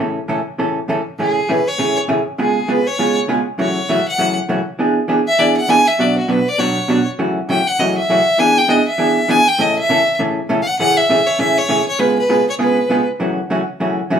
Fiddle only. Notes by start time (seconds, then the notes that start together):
1.20 G#4
1.50 B4
1.68 C#5
2.40 G#4
2.71 B4
2.87 C#5
3.60 C#5
3.90 E5
4.08 F#5
5.27 E5
5.39 D5
5.57 F#5
5.70 G#5
5.87 E5
6.01 D5
6.18 F#4
6.30 B4
6.48 D5
6.59 C#5
7.50 G5
7.67 F#5
7.80 D#5
7.97 E5
8.40 G#5
8.58 G5
8.70 D#5
8.88 E5
9.30 G#5
9.48 G5
9.61 D#5
9.78 E5
10.62 F5
10.67 F#5
10.79 F#5
10.97 E5
11.27 C#5
11.36 C#5 E5
11.58 C#5
11.88 C#5
11.99 B4
12.19 B4
12.50 C#5
12.61 B4